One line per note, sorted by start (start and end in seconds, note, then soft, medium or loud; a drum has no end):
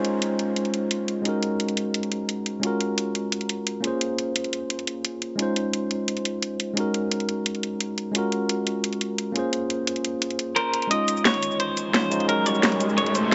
0.00 1.21 G#3 medium
0.00 1.22 C#4 medium
0.00 1.23 D#4 medium
0.00 1.24 F4 medium
0.00 1.25 C5 medium
0.05 closed hi-hat medium
0.22 closed hi-hat medium
0.39 closed hi-hat medium
0.56 closed hi-hat medium
0.65 closed hi-hat soft
0.74 closed hi-hat medium
0.91 closed hi-hat medium
1.08 closed hi-hat medium
1.22 2.59 G#3 medium
1.22 2.60 C#4 medium
1.22 2.61 D#4 medium
1.22 closed hi-hat medium
1.27 2.62 F#4 medium
1.27 2.63 A#4 medium
1.43 closed hi-hat medium
1.60 closed hi-hat medium
1.69 closed hi-hat soft
1.77 closed hi-hat medium
1.94 closed hi-hat medium
2.03 closed hi-hat soft
2.12 closed hi-hat medium
2.29 closed hi-hat medium
2.46 closed hi-hat medium
2.60 3.80 G#3 medium
2.60 3.81 C#4 medium
2.60 3.82 F4 medium
2.60 closed hi-hat medium
2.65 3.83 F#4 medium
2.65 3.84 A#4 medium
2.81 closed hi-hat medium
2.98 closed hi-hat medium
3.15 closed hi-hat medium
3.32 closed hi-hat medium
3.41 closed hi-hat soft
3.49 closed hi-hat medium
3.67 closed hi-hat medium
3.81 5.35 A#3 medium
3.81 5.36 C#4 medium
3.81 5.37 F4 medium
3.81 closed hi-hat medium
3.86 5.38 G#4 medium
3.86 5.39 C5 medium
4.01 closed hi-hat medium
4.18 closed hi-hat medium
4.36 closed hi-hat medium
4.44 closed hi-hat soft
4.53 closed hi-hat medium
4.70 closed hi-hat medium
4.79 closed hi-hat soft
4.87 closed hi-hat medium
5.05 closed hi-hat medium
5.22 closed hi-hat medium
5.36 6.72 G#3 medium
5.36 6.74 C#4 medium
5.36 6.75 D#4 medium
5.36 closed hi-hat medium
5.41 6.76 F4 medium
5.41 6.77 C5 medium
5.56 closed hi-hat medium
5.73 closed hi-hat medium
5.91 closed hi-hat medium
6.08 closed hi-hat medium
6.17 closed hi-hat soft
6.25 closed hi-hat medium
6.42 closed hi-hat medium
6.60 closed hi-hat medium
6.74 8.10 G#3 medium
6.74 8.12 C#4 medium
6.74 8.13 D#4 medium
6.74 closed hi-hat medium
6.79 8.14 F#4 medium
6.79 8.15 A#4 medium
6.94 closed hi-hat medium
7.12 closed hi-hat medium
7.20 closed hi-hat soft
7.29 closed hi-hat medium
7.46 closed hi-hat medium
7.55 closed hi-hat soft
7.63 closed hi-hat medium
7.81 closed hi-hat medium
7.98 closed hi-hat medium
8.12 9.32 G#3 medium
8.12 9.33 C#4 medium
8.12 9.34 F4 medium
8.12 closed hi-hat medium
8.17 9.34 F#4 medium
8.17 9.35 A#4 medium
8.32 closed hi-hat medium
8.49 closed hi-hat medium
8.67 closed hi-hat medium
8.84 closed hi-hat medium
8.93 closed hi-hat soft
9.01 closed hi-hat medium
9.18 closed hi-hat medium
9.32 10.87 A#3 medium
9.32 10.88 C#4 medium
9.32 10.89 F4 medium
9.32 closed hi-hat medium
9.37 10.90 G#4 medium
9.37 10.90 C5 medium
9.53 closed hi-hat medium
9.70 closed hi-hat medium
9.87 closed hi-hat medium
9.96 closed hi-hat soft
10.05 closed hi-hat medium
10.22 closed hi-hat medium
10.31 closed hi-hat soft
10.39 closed hi-hat medium
10.56 10.88 A#4 loud
10.56 10.90 C5 medium
10.56 closed hi-hat medium
10.74 closed hi-hat medium
10.82 closed hi-hat soft
10.87 11.91 G#3 medium
10.87 11.92 C#4 medium
10.87 11.93 D#4 medium
10.87 11.25 D#5 loud
10.87 closed hi-hat medium
10.87 riser medium
10.92 11.93 F4 medium
10.92 11.94 D#5 medium
11.08 closed hi-hat medium
11.08 shaker medium
11.17 shaker soft
11.25 11.57 C#5 loud
11.25 snare loud
11.25 closed hi-hat medium
11.34 closed hi-hat soft
11.43 closed hi-hat medium
11.43 shaker medium
11.51 shaker soft
11.60 11.92 C5 loud
11.60 closed hi-hat medium
11.77 closed hi-hat medium
11.77 shaker medium
11.93 12.09 G#3 medium
11.93 12.09 C#4 medium
11.93 12.10 D#4 medium
11.93 12.10 F4 medium
11.93 12.28 C5 loud
11.93 12.10 C#5 medium
11.93 snare loud
11.93 closed hi-hat medium
11.93 shaker soft
12.10 12.24 G#3 medium
12.10 12.26 C#4 medium
12.10 12.27 D#4 medium
12.10 12.27 F4 medium
12.10 12.28 C5 medium
12.10 closed hi-hat medium
12.10 shaker medium
12.20 closed hi-hat soft
12.25 13.29 G#3 medium
12.25 13.30 C#4 medium
12.25 13.31 D#4 medium
12.25 12.46 A#4 loud
12.25 closed hi-hat medium
12.30 13.31 F#4 medium
12.30 13.32 A#4 medium
12.46 12.80 C#5 loud
12.46 closed hi-hat medium
12.46 shaker medium
12.55 shaker soft
12.63 snare loud
12.63 closed hi-hat medium
12.72 closed hi-hat soft
12.80 closed hi-hat medium
12.80 shaker medium
12.89 shaker soft
12.98 13.15 C#5 loud
12.98 closed hi-hat medium
13.06 closed hi-hat soft
13.15 13.35 C5 loud
13.15 closed hi-hat medium
13.15 shaker medium
13.31 13.35 G#3 medium
13.31 13.35 C#4 medium